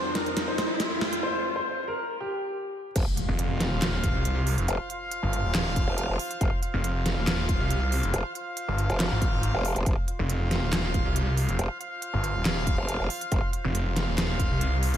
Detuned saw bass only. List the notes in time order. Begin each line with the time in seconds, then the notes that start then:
3.28 F1
3.72 D#1
4.15 C2
4.58 F1
5.23 G1
5.44 D#1
6.74 F1
7.17 D#1
7.60 C2
8.03 F1
8.68 G1
9.11 G#1
10.19 F1
10.62 D#1
11.05 C2
11.49 F1
12.13 G1
12.35 D#1
13.64 F1
14.08 D#1
14.51 C2
14.94 F1